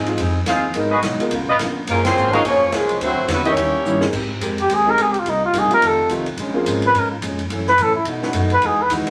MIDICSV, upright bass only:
0, 0, Header, 1, 3, 480
1, 0, Start_track
1, 0, Tempo, 281030
1, 1296, Time_signature, 4, 2, 24, 8
1, 15543, End_track
2, 0, Start_track
2, 0, Title_t, "Upright bass"
2, 0, Program_c, 0, 32
2, 0, Note_on_c, 0, 44, 100
2, 309, Note_off_c, 0, 44, 0
2, 329, Note_on_c, 0, 41, 81
2, 793, Note_off_c, 0, 41, 0
2, 803, Note_on_c, 0, 39, 94
2, 1259, Note_off_c, 0, 39, 0
2, 1270, Note_on_c, 0, 32, 83
2, 1731, Note_off_c, 0, 32, 0
2, 1741, Note_on_c, 0, 35, 101
2, 2020, Note_off_c, 0, 35, 0
2, 2242, Note_on_c, 0, 37, 92
2, 2413, Note_off_c, 0, 37, 0
2, 2413, Note_on_c, 0, 35, 56
2, 2555, Note_off_c, 0, 35, 0
2, 2566, Note_on_c, 0, 32, 68
2, 2720, Note_off_c, 0, 32, 0
2, 2730, Note_on_c, 0, 34, 103
2, 3189, Note_off_c, 0, 34, 0
2, 3199, Note_on_c, 0, 30, 100
2, 3668, Note_off_c, 0, 30, 0
2, 3679, Note_on_c, 0, 32, 105
2, 4147, Note_off_c, 0, 32, 0
2, 4157, Note_on_c, 0, 34, 81
2, 4321, Note_off_c, 0, 34, 0
2, 4321, Note_on_c, 0, 30, 57
2, 4456, Note_off_c, 0, 30, 0
2, 4467, Note_on_c, 0, 29, 62
2, 4612, Note_off_c, 0, 29, 0
2, 4623, Note_on_c, 0, 36, 86
2, 5105, Note_off_c, 0, 36, 0
2, 5126, Note_on_c, 0, 38, 86
2, 5289, Note_on_c, 0, 36, 63
2, 5315, Note_off_c, 0, 38, 0
2, 5447, Note_off_c, 0, 36, 0
2, 5457, Note_on_c, 0, 33, 62
2, 5584, Note_off_c, 0, 33, 0
2, 5595, Note_on_c, 0, 40, 103
2, 6071, Note_off_c, 0, 40, 0
2, 6088, Note_on_c, 0, 39, 85
2, 6552, Note_off_c, 0, 39, 0
2, 6563, Note_on_c, 0, 43, 84
2, 7031, Note_off_c, 0, 43, 0
2, 7042, Note_on_c, 0, 44, 92
2, 7508, Note_off_c, 0, 44, 0
2, 7518, Note_on_c, 0, 41, 91
2, 7993, Note_off_c, 0, 41, 0
2, 8004, Note_on_c, 0, 39, 87
2, 8470, Note_off_c, 0, 39, 0
2, 8481, Note_on_c, 0, 37, 89
2, 8954, Note_off_c, 0, 37, 0
2, 8977, Note_on_c, 0, 36, 89
2, 9433, Note_off_c, 0, 36, 0
2, 9443, Note_on_c, 0, 34, 100
2, 9712, Note_off_c, 0, 34, 0
2, 9923, Note_on_c, 0, 29, 79
2, 10395, Note_off_c, 0, 29, 0
2, 10406, Note_on_c, 0, 36, 87
2, 10866, Note_off_c, 0, 36, 0
2, 10876, Note_on_c, 0, 34, 93
2, 11352, Note_off_c, 0, 34, 0
2, 11363, Note_on_c, 0, 32, 98
2, 11835, Note_off_c, 0, 32, 0
2, 11850, Note_on_c, 0, 44, 87
2, 12311, Note_off_c, 0, 44, 0
2, 12321, Note_on_c, 0, 41, 94
2, 12794, Note_off_c, 0, 41, 0
2, 12813, Note_on_c, 0, 42, 89
2, 13280, Note_off_c, 0, 42, 0
2, 13292, Note_on_c, 0, 45, 93
2, 13760, Note_off_c, 0, 45, 0
2, 13772, Note_on_c, 0, 47, 79
2, 14225, Note_off_c, 0, 47, 0
2, 14236, Note_on_c, 0, 42, 90
2, 14708, Note_off_c, 0, 42, 0
2, 14718, Note_on_c, 0, 40, 85
2, 15193, Note_off_c, 0, 40, 0
2, 15203, Note_on_c, 0, 39, 96
2, 15354, Note_on_c, 0, 35, 59
2, 15380, Note_off_c, 0, 39, 0
2, 15509, Note_off_c, 0, 35, 0
2, 15543, End_track
3, 0, Start_track
3, 0, Title_t, "Muted upright bass strokes"
3, 2052, Note_on_c, 9, 29, 41
3, 2223, Note_off_c, 9, 29, 0
3, 9735, Note_on_c, 9, 29, 36
3, 9905, Note_off_c, 9, 29, 0
3, 15543, End_track
0, 0, End_of_file